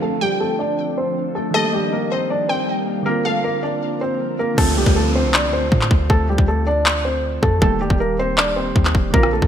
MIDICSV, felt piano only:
0, 0, Header, 1, 2, 480
1, 0, Start_track
1, 0, Tempo, 379747
1, 29, Time_signature, 4, 2, 24, 8
1, 11975, End_track
2, 0, Start_track
2, 0, Title_t, "Felt piano"
2, 0, Program_c, 0, 0
2, 27, Note_on_c, 0, 69, 100
2, 38, Note_on_c, 0, 57, 77
2, 235, Note_off_c, 0, 69, 0
2, 241, Note_off_c, 0, 57, 0
2, 269, Note_on_c, 0, 67, 77
2, 279, Note_on_c, 0, 55, 57
2, 476, Note_off_c, 0, 67, 0
2, 482, Note_off_c, 0, 55, 0
2, 511, Note_on_c, 0, 69, 82
2, 521, Note_on_c, 0, 57, 64
2, 717, Note_off_c, 0, 69, 0
2, 723, Note_off_c, 0, 57, 0
2, 746, Note_on_c, 0, 74, 86
2, 756, Note_on_c, 0, 62, 66
2, 1199, Note_off_c, 0, 74, 0
2, 1204, Note_off_c, 0, 62, 0
2, 1234, Note_on_c, 0, 72, 78
2, 1244, Note_on_c, 0, 60, 53
2, 1683, Note_off_c, 0, 72, 0
2, 1688, Note_off_c, 0, 60, 0
2, 1707, Note_on_c, 0, 69, 83
2, 1718, Note_on_c, 0, 57, 65
2, 1915, Note_off_c, 0, 69, 0
2, 1921, Note_off_c, 0, 57, 0
2, 1950, Note_on_c, 0, 69, 106
2, 1960, Note_on_c, 0, 57, 80
2, 2157, Note_off_c, 0, 69, 0
2, 2162, Note_off_c, 0, 57, 0
2, 2189, Note_on_c, 0, 67, 79
2, 2200, Note_on_c, 0, 55, 59
2, 2396, Note_off_c, 0, 67, 0
2, 2402, Note_off_c, 0, 55, 0
2, 2434, Note_on_c, 0, 70, 80
2, 2444, Note_on_c, 0, 58, 55
2, 2639, Note_off_c, 0, 70, 0
2, 2645, Note_off_c, 0, 58, 0
2, 2676, Note_on_c, 0, 72, 91
2, 2686, Note_on_c, 0, 60, 67
2, 2880, Note_off_c, 0, 72, 0
2, 2886, Note_off_c, 0, 60, 0
2, 2911, Note_on_c, 0, 74, 83
2, 2920, Note_on_c, 0, 62, 62
2, 3117, Note_off_c, 0, 74, 0
2, 3122, Note_off_c, 0, 62, 0
2, 3144, Note_on_c, 0, 72, 76
2, 3155, Note_on_c, 0, 60, 65
2, 3823, Note_off_c, 0, 72, 0
2, 3829, Note_off_c, 0, 60, 0
2, 3865, Note_on_c, 0, 70, 98
2, 3875, Note_on_c, 0, 58, 77
2, 4074, Note_off_c, 0, 70, 0
2, 4079, Note_off_c, 0, 58, 0
2, 4112, Note_on_c, 0, 69, 73
2, 4122, Note_on_c, 0, 57, 57
2, 4318, Note_off_c, 0, 69, 0
2, 4323, Note_off_c, 0, 57, 0
2, 4348, Note_on_c, 0, 70, 85
2, 4356, Note_on_c, 0, 58, 67
2, 4555, Note_off_c, 0, 70, 0
2, 4560, Note_off_c, 0, 58, 0
2, 4586, Note_on_c, 0, 74, 84
2, 4596, Note_on_c, 0, 62, 60
2, 5038, Note_off_c, 0, 74, 0
2, 5044, Note_off_c, 0, 62, 0
2, 5071, Note_on_c, 0, 72, 79
2, 5081, Note_on_c, 0, 60, 62
2, 5521, Note_off_c, 0, 72, 0
2, 5526, Note_off_c, 0, 60, 0
2, 5551, Note_on_c, 0, 70, 81
2, 5562, Note_on_c, 0, 58, 64
2, 5757, Note_off_c, 0, 70, 0
2, 5763, Note_off_c, 0, 58, 0
2, 5787, Note_on_c, 0, 69, 107
2, 5798, Note_on_c, 0, 57, 82
2, 5995, Note_off_c, 0, 69, 0
2, 6001, Note_off_c, 0, 57, 0
2, 6029, Note_on_c, 0, 67, 81
2, 6040, Note_on_c, 0, 55, 62
2, 6236, Note_off_c, 0, 67, 0
2, 6242, Note_off_c, 0, 55, 0
2, 6271, Note_on_c, 0, 69, 77
2, 6281, Note_on_c, 0, 57, 60
2, 6477, Note_off_c, 0, 69, 0
2, 6483, Note_off_c, 0, 57, 0
2, 6515, Note_on_c, 0, 72, 89
2, 6524, Note_on_c, 0, 60, 68
2, 6719, Note_off_c, 0, 72, 0
2, 6724, Note_off_c, 0, 60, 0
2, 6756, Note_on_c, 0, 74, 85
2, 6767, Note_on_c, 0, 62, 70
2, 6960, Note_off_c, 0, 74, 0
2, 6966, Note_off_c, 0, 62, 0
2, 6992, Note_on_c, 0, 72, 82
2, 7002, Note_on_c, 0, 60, 63
2, 7667, Note_off_c, 0, 72, 0
2, 7673, Note_off_c, 0, 60, 0
2, 7711, Note_on_c, 0, 69, 103
2, 7722, Note_on_c, 0, 57, 75
2, 7917, Note_off_c, 0, 69, 0
2, 7923, Note_off_c, 0, 57, 0
2, 7949, Note_on_c, 0, 67, 76
2, 7959, Note_on_c, 0, 55, 60
2, 8156, Note_off_c, 0, 67, 0
2, 8162, Note_off_c, 0, 55, 0
2, 8192, Note_on_c, 0, 69, 83
2, 8202, Note_on_c, 0, 57, 67
2, 8398, Note_off_c, 0, 69, 0
2, 8403, Note_off_c, 0, 57, 0
2, 8426, Note_on_c, 0, 74, 89
2, 8435, Note_on_c, 0, 62, 68
2, 8878, Note_off_c, 0, 74, 0
2, 8883, Note_off_c, 0, 62, 0
2, 8909, Note_on_c, 0, 72, 83
2, 8920, Note_on_c, 0, 60, 57
2, 9360, Note_off_c, 0, 72, 0
2, 9366, Note_off_c, 0, 60, 0
2, 9384, Note_on_c, 0, 69, 83
2, 9394, Note_on_c, 0, 57, 67
2, 9593, Note_off_c, 0, 69, 0
2, 9599, Note_off_c, 0, 57, 0
2, 9628, Note_on_c, 0, 69, 107
2, 9639, Note_on_c, 0, 57, 81
2, 9835, Note_off_c, 0, 69, 0
2, 9841, Note_off_c, 0, 57, 0
2, 9868, Note_on_c, 0, 67, 83
2, 9877, Note_on_c, 0, 55, 61
2, 10075, Note_off_c, 0, 67, 0
2, 10081, Note_off_c, 0, 55, 0
2, 10114, Note_on_c, 0, 70, 80
2, 10124, Note_on_c, 0, 58, 55
2, 10319, Note_off_c, 0, 70, 0
2, 10325, Note_off_c, 0, 58, 0
2, 10357, Note_on_c, 0, 72, 95
2, 10365, Note_on_c, 0, 60, 69
2, 10560, Note_off_c, 0, 72, 0
2, 10565, Note_off_c, 0, 60, 0
2, 10589, Note_on_c, 0, 74, 82
2, 10600, Note_on_c, 0, 62, 64
2, 10796, Note_off_c, 0, 74, 0
2, 10802, Note_off_c, 0, 62, 0
2, 10825, Note_on_c, 0, 72, 77
2, 10836, Note_on_c, 0, 60, 66
2, 11503, Note_off_c, 0, 72, 0
2, 11509, Note_off_c, 0, 60, 0
2, 11548, Note_on_c, 0, 70, 100
2, 11557, Note_on_c, 0, 58, 82
2, 11755, Note_off_c, 0, 70, 0
2, 11761, Note_off_c, 0, 58, 0
2, 11791, Note_on_c, 0, 69, 76
2, 11801, Note_on_c, 0, 57, 58
2, 11975, Note_off_c, 0, 57, 0
2, 11975, Note_off_c, 0, 69, 0
2, 11975, End_track
0, 0, End_of_file